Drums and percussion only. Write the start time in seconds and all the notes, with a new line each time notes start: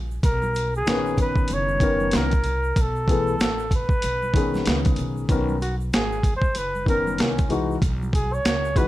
0.11 shaker
0.23 kick, closed hi-hat, shaker
0.42 high conga, shaker
0.55 closed hi-hat, shaker
0.75 shaker
0.86 snare, closed hi-hat, shaker
1.06 shaker
1.18 kick, closed hi-hat, low conga, shaker
1.36 kick, shaker
1.48 closed hi-hat, shaker
1.68 high conga, shaker
1.80 kick, closed hi-hat, high conga, shaker
2.00 high conga, shaker
2.11 snare, closed hi-hat, shaker
2.31 kick, closed hi-hat, high conga, shaker
2.44 closed hi-hat, low conga, shaker
2.64 shaker
2.76 kick, closed hi-hat, shaker
2.96 shaker
3.08 kick, closed hi-hat, shaker
3.28 shaker
3.40 snare, closed hi-hat, shaker
3.59 shaker
3.71 kick, closed hi-hat, low conga, shaker
3.89 kick, shaker
4.02 closed hi-hat, shaker
4.23 high conga, shaker
4.34 kick, closed hi-hat, high conga, shaker
4.54 snare, high conga, shaker
4.66 snare, closed hi-hat, shaker
4.85 kick, closed hi-hat, high conga, shaker
4.96 closed hi-hat, low conga, shaker
5.17 shaker
5.29 kick, closed hi-hat, shaker
5.49 high conga, shaker
5.62 closed hi-hat, shaker
5.81 shaker
5.93 snare, closed hi-hat, shaker
6.12 shaker
6.23 kick, closed hi-hat, low conga, shaker
6.42 kick, shaker
6.55 closed hi-hat, shaker
6.75 high conga, shaker
6.86 kick, closed hi-hat, high conga, shaker
7.07 high conga, shaker
7.18 snare, closed hi-hat, low conga, shaker
7.38 kick, closed hi-hat, shaker
7.50 closed hi-hat, low conga, shaker
7.71 shaker
7.82 kick, closed hi-hat, shaker
8.03 high conga, shaker
8.13 kick, closed hi-hat, shaker
8.34 shaker
8.45 snare, closed hi-hat, shaker
8.65 shaker
8.76 kick, closed hi-hat, low conga, shaker